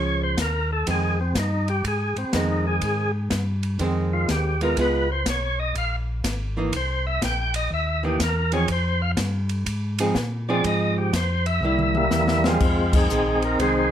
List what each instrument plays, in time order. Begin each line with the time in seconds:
Already playing: tonewheel organ C#2 C#5, hollow-body jazz guitar F3 G#3 C#4
0.23 tonewheel organ C5
0.37 tonewheel organ D#2, kick, snare, hi-hat pedal, ride
0.42 tonewheel organ A#4
0.72 tonewheel organ A4
0.86 tonewheel organ F2, hollow-body jazz guitar D#3 G#3 C4, kick, ride
0.91 tonewheel organ G#4
1.21 tonewheel organ C4
1.35 tonewheel organ G2, kick, snare, hi-hat pedal, ride
1.39 tonewheel organ D#4
1.68 tonewheel organ G4, ride
1.84 tonewheel organ G#2 G#4, kick, ride
2.16 tonewheel organ G#2 C4, ride
2.33 tonewheel organ F2 D#4, hollow-body jazz guitar D#3 G#3 C4, kick, snare, hi-hat pedal, ride
2.67 tonewheel organ G#4
2.81 tonewheel organ G#2, kick, ride
3.30 tonewheel organ G2, kick, snare, hi-hat pedal, ride
3.63 ride
3.79 tonewheel organ F2, hollow-body jazz guitar D#3 G#3 C4, kick, ride
4.13 tonewheel organ F4
4.28 tonewheel organ D#2 G4, kick, snare, hi-hat pedal, ride
4.61 hollow-body jazz guitar G#3 B3 F4, tonewheel organ A#4, ride
4.76 tonewheel organ C#2, hollow-body jazz guitar G#3 B3 F4, kick, ride
4.81 tonewheel organ B4
5.12 tonewheel organ C5
5.26 tonewheel organ B1 C#5, kick, snare, hi-hat pedal, ride
5.59 tonewheel organ D#5
5.75 tonewheel organ A#1 F5, kick, ride
6.24 tonewheel organ G#1, kick, snare, hi-hat pedal, ride
6.57 hollow-body jazz guitar E3 A#3 D#4
6.72 tonewheel organ C2 C5, kick, ride
7.07 tonewheel organ E5
7.21 tonewheel organ A#1 G5, kick, snare, hi-hat pedal, ride
7.54 tonewheel organ D#5, ride
7.70 tonewheel organ D#2 E5, kick
8.03 hollow-body jazz guitar E3 A#3 D#4, tonewheel organ G4
8.19 tonewheel organ E2 A#4, kick, snare, hi-hat pedal, ride
8.52 hollow-body jazz guitar F3 C4 D#4 G#4, tonewheel organ C#5, ride
8.68 tonewheel organ F2, kick, ride
8.72 tonewheel organ C5
9.02 tonewheel organ F5
9.17 tonewheel organ G2, kick, snare, hi-hat pedal, ride
9.49 ride
9.66 tonewheel organ G#2, kick, ride
9.98 hollow-body jazz guitar F3 C4 D#4 G#4, ride
10.15 tonewheel organ A#2, kick, snare, hi-hat pedal
10.49 hollow-body jazz guitar F3 C4 D#4 G#4, tonewheel organ D5
10.64 tonewheel organ G#2 D#5, kick, ride
10.98 tonewheel organ G4
11.13 tonewheel organ F2 C5, kick, snare, hi-hat pedal, ride
11.46 tonewheel organ E5, ride
11.61 tonewheel organ C2, hollow-body jazz guitar G3 A#3 E4, mid tom
11.79 mid tom
11.95 tonewheel organ G3 A#3 E4, mid tom
12.11 tonewheel organ E2, snare, hi-hat pedal
12.28 snare
12.44 hollow-body jazz guitar F3 C4 D#4 G#4, tonewheel organ G#3 C4 F4, snare
12.60 tonewheel organ F2, kick, crash
12.93 tonewheel organ C4 D#4 G#4, kick, crash
13.10 tonewheel organ A#1, hollow-body jazz guitar D#3 G#3 C4, hi-hat pedal
13.42 tonewheel organ A#4, ride
13.59 tonewheel organ C2 D#4 G#4 C5, hollow-body jazz guitar D#3 G#3 C4, kick, ride